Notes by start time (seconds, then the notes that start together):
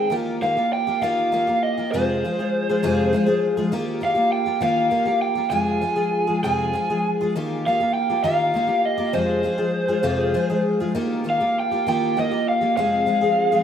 Already playing: G#3 C4 G#4 G5
0.10 D#3 A#3 F4 G4
0.41 D#3 A#3 F4 G4 F5
0.57 A#3 F4 G4
0.73 G5
0.87 A#3 F4 G4
1.02 D#3 A#3 F4 G4 F5
1.32 D#3 A#3 F4 G4
1.47 A#3 F4 G4
1.63 D#5
1.78 A#3 F4 G4
1.92 F2 C3 F3 G#3 F4 G#4 C5
2.24 F3 G#3 F4 G#4
2.39 F3 G#3 F4 G#4
2.70 F3 G#3 F4 G#4
2.83 F2 C3 F3 G#3 F4 G#4
3.13 F3 G#3 F4 G#4
3.26 F3 G#3 F4 G#4
3.57 F3 G#3 F4 G#4
3.72 D#3 A#3 F4 G4
4.01 D#3 A#3 F4 G4 F5
4.15 A#3 F4 G4
4.32 G5
4.46 A#3 F4 G4
4.61 D#3 A#3 F4 G4 F5
4.91 D#3 A#3 F4 G4
5.06 A#3 F4 G4
5.22 G5
5.35 A#3 F4 G4
5.50 F2 C3 F3 G#3 F4 G#4 G#5
5.81 F3 G#3 F4 G#4
5.96 F3 G#3 F4 G#4
6.27 F3 G#3 F4 G#4
6.43 F2 C3 F3 G#3 F4 G#4 G#5
6.73 F3 G#3 F4 G#4
6.90 F3 G#3 F4 G#4
7.21 F3 G#3 F4 G#4
7.36 D#3 A#3 F4 G4
7.66 D#3 A#3 F4 G4 F5
7.80 A#3 F4 G4
7.94 G5
8.10 A#3 F4 G4
8.24 D#3 A#3 F4 G4 F5
8.54 D#3 A#3 F4 G4
8.67 A#3 F4 G4
8.85 D#5
8.98 A#3 F4 G4
9.13 F2 C3 F3 G#3 F4 G#4 C5
9.43 F3 G#3 F4 G#4
9.58 F3 G#3 F4 G#4
9.88 F3 G#3 F4 G#4
10.03 F2 C3 F3 G#3 F4 G#4
10.34 F3 G#3 F4 G#4
10.50 F3 G#3 F4 G#4
10.80 F3 G#3 F4 G#4
10.95 D#3 A#3 F4 G4
11.24 D#3 A#3 F4 G4
11.30 F5
11.40 A#3 F4 G4
11.60 G5
11.71 A#3 F4 G4
11.87 D#3 A#3 F4 G4 G5
12.17 D#3 A#3 F4 G4 D#5
12.31 A#3 F4 G4
12.49 F5
12.61 A#3 F4 G4
12.77 F2 C3 F3 G#3 C4 G#4 F5
13.06 F3 G#3 C4 G#4
13.21 F3 G#3 C4 G#4
13.52 F3 G#3 C4 G#4